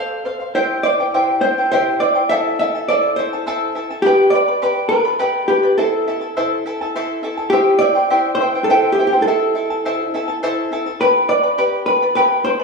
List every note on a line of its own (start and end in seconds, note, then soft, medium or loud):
0.00 0.24 A4 medium
0.00 0.24 C5 medium
0.00 0.30 C5 medium
0.00 0.25 F5 loud
0.25 0.40 A4 medium
0.25 0.40 C5 medium
0.25 0.38 F5 medium
0.40 0.54 C5 soft
0.40 0.55 F5 soft
0.55 0.83 E4 medium
0.55 0.84 G4 medium
0.55 0.82 C5 medium
0.55 0.84 C5 medium
0.55 0.82 E5 medium
0.55 0.84 G5 loud
0.83 0.99 E4 medium
0.83 0.99 C5 medium
0.83 1.38 D5 loud
0.83 0.98 E5 medium
0.83 0.99 G5 medium
1.00 1.13 E4 soft
1.00 1.13 C5 medium
1.00 1.14 G5 medium
1.14 1.43 E4 medium
1.14 1.43 G4 medium
1.14 1.43 C5 medium
1.14 1.41 E5 medium
1.14 1.43 G5 medium
1.41 1.58 E4 medium
1.41 1.70 C5 medium
1.41 1.58 C5 medium
1.41 1.57 E5 medium
1.41 1.57 G5 medium
1.58 1.71 E4 soft
1.58 1.72 C5 soft
1.58 1.72 G5 medium
1.72 2.00 E4 medium
1.72 2.01 G4 medium
1.72 1.99 C5 loud
1.72 2.00 C5 loud
1.72 1.99 E5 medium
1.72 2.01 G5 medium
2.00 2.15 E4 medium
2.00 2.14 C5 medium
2.00 2.27 D5 loud
2.00 2.15 E5 medium
2.00 2.14 G5 medium
2.15 2.30 E4 soft
2.15 2.29 C5 medium
2.15 2.30 G5 medium
2.29 2.59 E4 medium
2.29 2.59 A4 medium
2.29 2.59 C5 medium
2.29 2.57 E5 loud
2.29 2.58 E5 medium
2.29 2.60 A5 medium
2.59 2.74 E4 medium
2.59 2.74 A4 medium
2.59 2.88 E5 loud
2.59 2.74 E5 medium
2.59 2.74 A5 medium
2.75 2.88 E4 soft
2.75 2.88 A4 medium
2.75 2.89 A5 medium
2.88 3.18 E4 medium
2.88 3.18 A4 medium
2.88 3.17 C5 medium
2.88 3.18 D5 loud
2.88 3.17 E5 medium
2.88 3.18 A5 medium
3.16 3.32 E4 medium
3.16 3.33 A4 medium
3.16 3.78 C5 medium
3.16 3.32 E5 medium
3.16 3.32 A5 medium
3.33 3.46 E4 soft
3.33 3.46 A4 medium
3.33 3.47 A5 medium
3.46 3.74 E4 medium
3.46 3.75 A4 medium
3.46 3.75 C5 medium
3.46 3.74 E5 loud
3.46 3.75 A5 loud
3.75 3.90 E4 medium
3.75 3.90 A4 medium
3.75 3.89 E5 medium
3.75 3.89 A5 medium
3.90 4.05 E4 soft
3.90 4.05 A4 medium
3.90 4.04 A5 medium
4.02 4.30 G4 loud
4.02 4.34 G4 medium
4.02 4.33 B4 loud
4.02 4.33 G5 medium
4.06 4.34 D5 medium
4.06 4.34 B5 loud
4.30 4.48 B4 medium
4.30 4.88 D5 loud
4.30 4.48 G5 medium
4.35 4.47 D5 medium
4.35 4.47 B5 medium
4.48 4.61 B4 soft
4.48 4.62 D5 medium
4.48 4.62 B5 medium
4.62 4.91 G4 medium
4.62 4.90 B4 medium
4.62 4.90 D5 medium
4.62 4.90 G5 medium
4.62 4.91 B5 loud
4.89 5.50 B4 loud
4.89 5.05 B4 medium
4.89 5.04 D5 medium
4.89 5.05 G5 medium
4.89 5.04 B5 medium
5.05 5.18 B4 medium
5.05 5.19 D5 medium
5.05 5.19 B5 medium
5.19 5.49 G4 loud
5.19 5.47 B4 medium
5.19 5.48 D5 loud
5.19 5.47 G5 medium
5.19 5.48 B5 loud
5.48 5.77 G4 medium
5.48 5.63 B4 medium
5.48 5.62 D5 medium
5.48 5.63 G5 medium
5.48 5.62 B5 medium
5.63 5.78 B4 medium
5.63 5.78 D5 medium
5.63 5.78 B5 medium
5.78 6.06 E4 medium
5.78 6.90 A4 medium
5.78 6.07 A4 medium
5.78 6.07 C5 medium
5.78 6.06 E5 medium
5.78 6.07 A5 medium
6.07 6.21 E4 medium
6.07 6.20 A4 medium
6.07 6.22 E5 medium
6.07 6.20 A5 medium
6.21 6.36 E4 soft
6.21 6.36 A4 medium
6.21 6.36 A5 medium
6.37 6.65 E4 medium
6.37 6.66 A4 medium
6.37 6.65 C5 medium
6.37 6.64 E5 loud
6.37 6.66 A5 medium
6.66 6.80 E4 medium
6.66 6.80 A4 medium
6.66 6.80 E5 medium
6.66 6.80 A5 medium
6.81 6.95 E4 medium
6.81 6.95 A4 medium
6.81 6.95 A5 medium
6.96 7.22 E4 loud
6.96 7.23 A4 loud
6.96 7.24 C5 loud
6.96 7.22 E5 loud
6.96 7.23 A5 loud
7.23 7.38 E4 medium
7.23 7.37 A4 medium
7.23 7.37 E5 medium
7.23 7.36 A5 medium
7.37 7.52 E4 medium
7.37 7.52 A4 medium
7.37 7.52 A5 medium
7.50 7.80 E4 medium
7.50 7.78 G4 loud
7.50 7.81 G4 medium
7.50 7.80 C5 medium
7.50 7.80 E5 medium
7.50 7.81 G5 loud
7.79 7.95 E4 medium
7.79 7.95 C5 medium
7.79 8.34 D5 loud
7.79 7.95 E5 medium
7.79 7.94 G5 medium
7.95 8.10 E4 soft
7.95 8.10 C5 medium
7.95 8.10 G5 medium
8.10 8.39 E4 loud
8.10 8.39 G4 medium
8.10 8.39 C5 medium
8.10 8.39 E5 medium
8.10 8.39 G5 medium
8.35 8.64 C5 loud
8.40 8.54 E4 medium
8.40 8.54 C5 medium
8.40 8.54 E5 medium
8.40 8.54 G5 medium
8.55 8.69 E4 soft
8.55 8.69 C5 medium
8.55 8.69 G5 medium
8.64 8.92 A4 loud
8.70 8.98 E4 medium
8.70 8.98 G4 medium
8.70 8.98 C5 loud
8.70 8.98 E5 medium
8.70 8.98 G5 loud
8.92 9.06 G4 medium
8.99 9.12 E4 medium
8.99 9.12 C5 medium
8.99 9.12 E5 medium
8.99 9.11 G5 medium
9.07 9.12 G4 medium
9.12 9.27 E4 medium
9.12 9.26 C5 medium
9.12 9.26 G5 medium
9.22 10.07 A4 loud
9.27 9.54 E4 medium
9.27 9.55 A4 medium
9.27 9.56 C5 medium
9.27 9.54 E5 medium
9.27 9.55 A5 medium
9.55 9.70 E4 medium
9.55 9.70 A4 medium
9.55 9.69 E5 medium
9.55 9.69 A5 medium
9.70 9.85 E4 soft
9.70 9.85 A4 soft
9.70 9.84 A5 medium
9.85 10.13 E4 medium
9.85 10.14 A4 medium
9.85 10.14 C5 medium
9.85 10.13 E5 medium
9.85 10.14 A5 medium
10.14 10.28 E4 medium
10.14 10.28 A4 medium
10.14 10.28 E5 medium
10.14 10.27 A5 medium
10.28 10.42 E4 medium
10.28 10.42 A4 medium
10.28 10.42 A5 medium
10.43 10.71 E4 loud
10.43 10.71 A4 loud
10.43 10.71 C5 loud
10.43 10.70 E5 loud
10.43 10.72 A5 loud
10.72 10.86 E4 medium
10.72 10.86 A4 medium
10.72 10.86 E5 medium
10.72 10.85 A5 medium
10.86 11.00 E4 soft
10.86 11.01 A4 medium
10.86 11.00 A5 medium
11.00 11.29 G4 medium
11.00 11.29 B4 loud
11.00 11.28 B4 medium
11.00 11.28 D5 medium
11.00 11.27 G5 medium
11.00 11.28 B5 medium
11.28 11.43 B4 medium
11.28 11.86 D5 loud
11.28 11.43 D5 medium
11.28 11.43 G5 medium
11.28 11.42 B5 medium
11.43 11.57 B4 soft
11.43 11.58 D5 soft
11.43 11.57 B5 medium
11.58 11.87 G4 medium
11.58 11.86 B4 loud
11.58 11.87 D5 loud
11.58 11.86 G5 medium
11.58 11.87 B5 loud
11.86 12.14 B4 medium
11.86 12.02 B4 medium
11.86 12.02 D5 medium
11.86 12.02 G5 medium
11.86 12.01 B5 medium
12.02 12.15 B4 soft
12.02 12.16 D5 medium
12.02 12.16 B5 medium
12.15 12.45 G4 medium
12.15 12.44 B4 loud
12.15 12.44 B4 medium
12.15 12.45 D5 medium
12.15 12.44 G5 loud
12.15 12.45 B5 medium
12.45 12.60 B4 medium
12.45 12.64 C5 loud
12.45 12.59 D5 medium
12.45 12.60 G5 medium
12.45 12.58 B5 medium
12.60 12.64 D5 medium
12.60 12.64 B5 medium